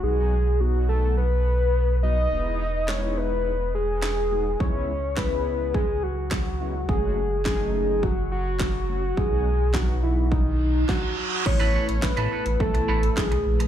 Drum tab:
CC |----------------|----------------|----------------|----------------|
HH |----------------|----------------|----------------|----------------|
CP |----------------|----x-------x---|----x-------x---|----x-------x---|
SD |----------------|----o-------o---|----o-------o---|----o-------o---|
BD |----------------|----------------|o---o---o---o---|o---o---o---o---|

CC |----------------|x---------------|
HH |----------------|-x-x-x-x-x-x-x-x|
CP |----x-----------|----x-------x---|
SD |----o-------o---|----o-------o---|
BD |o---o---o---o---|o---o---o---o---|